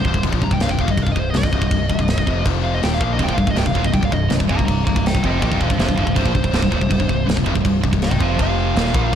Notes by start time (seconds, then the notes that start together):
Already playing: C5
0.05 C1 C2 G2, kick
0.14 C1 C2 G2, kick
0.23 C1 C2 G2, kick, crash
0.32 A#1 A#2 F3, kick
0.42 C1 C2 G2 A#5, kick
0.51 C1 C2 G2 G5, kick
0.60 C1 C2 G2 F5, snare, crash
0.69 C1 C2 G2 G5, kick
0.79 D#1 D#2 A#2 F5, kick
0.88 C1 C2 G2 D#5, kick
0.97 C1 C2 G2, kick, crash
1.02 F5
1.07 C1 C2 G2, kick
1.12 C2 G2 D#5
1.16 C1 C5, kick
1.30 C2 D#5, crash
1.34 C1 G2, snare
1.39 C2 D#5
1.43 C1 G2, kick, snare
1.52 C1 C2 G2, kick
1.61 C1 C2 G2, kick
1.71 C1 C2 G2, kick, crash
1.90 C1 C2 G2, kick
1.99 C1 C2 G2, kick
2.08 snare, crash
2.18 C1 C2 G2, kick
2.26 F1 F2 C3 F3, kick
2.45 F1 F2 C3 F3, kick, crash
2.64 F5
2.75 D#5
2.82 D#1 D#2 A#2 D#3 G5, snare, crash
2.93 F5, snare
2.99 A#1 A#2 F3 A#3, kick
3.03 F5
3.13 D#5
3.19 C1 C2 G2, kick, crash
3.24 G5
3.28 A#1 A#2 F3, kick
3.34 C1 F5, kick
3.39 C2 G2 F5
3.47 C1 C2 G2 D#5, kick
3.56 C1 C2 G2 G5, snare, crash
3.66 C1 C2 G2 F5, kick
3.75 D#1 D#2 A#2 F5, kick
3.84 C1 C2 G2 D#5, kick
3.93 C1 C2 G2 G5, kick, crash
4.03 C1 C2 G2 F5, kick
4.10 C1 C2 G2 D#5, kick
4.15 C2 G2
4.30 C1 C2 G2, snare, crash
4.38 C1 C2 G2, kick
4.43 G2
4.48 C1 C2 G2 F5 A#5, kick
4.52 G2
4.58 C1 C2, kick
4.62 C2 G2 F5
4.66 C1 C2 A#5, kick, crash
4.71 C2 G2
4.85 C1 F5 A#5, kick
4.89 C2 G2
4.96 C1 C2 G2, kick
5.06 D#5 G5, snare, crash
5.15 C1 C2 G2, kick
5.24 F1 F2 C3 F3 D#5 G5, kick
5.42 A#1 A#2 F3 D#5 G5, kick, crash
5.52 C1 C2 G2, kick
5.61 D#1 D#2 A#2 C5 F5, kick
5.70 C1 C2 G2, kick
5.79 F1 F2 C3 C5 F5, snare, crash
5.87 C1 C2, kick
5.91 C2 G2
5.96 C1 G2 C5 F5, kick
6.01 C2 G2
6.06 C1 C2 G2, kick
6.10 C2 G2
6.16 C1 C2 G2 C5, kick, crash
6.24 A#1 A#2 F3, kick
6.29 F3
6.35 C1 C2 G2, kick
6.44 C1 C2 G2, kick
6.52 C1 C2 G2, snare, crash
6.56 G2
6.62 C1 C2 G2, kick
6.72 D#1 D#2 A#2, kick
6.80 C1 C2 G2, kick
6.89 C1 C2 G2, kick, crash
6.97 C1 C2 G2, kick
7.07 C1 C2 G2, kick
7.26 C1 C2 G2, snare, crash
7.37 C1 C2 G2, kick
7.45 C1 C2 G2, kick
7.55 C1 C2 G2, kick
7.64 C1 C2 G2, kick, crash
7.83 C1 C2 G2, kick
7.91 C1 C2 G2, kick
8.02 D#5 G5, snare, crash
8.10 C1 C2 G2, kick
8.18 F1 F2 C3 F3, kick
8.23 C5 F5
8.37 F1 F2 C3 F3, kick, crash
8.42 F5
8.75 D#1 D#2 A#2 D#3, snare, crash
8.87 snare
8.93 A#1 A#2 F3 A#3, kick
9.12 C2